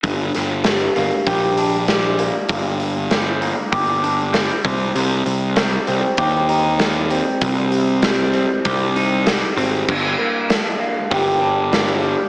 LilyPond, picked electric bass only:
\new Staff \with { instrumentName = "Picked electric bass" } { \clef bass \time 4/4 \key g \minor \tempo 4 = 98 g,,8 g,,4 g,,16 r16 bes,,2 | g,,2 g,,4. c,8 | c,8 c,4 c,16 r16 ees,2 | c,2 c,4. aes,,8 |
g,,8 r4. g,,2 | }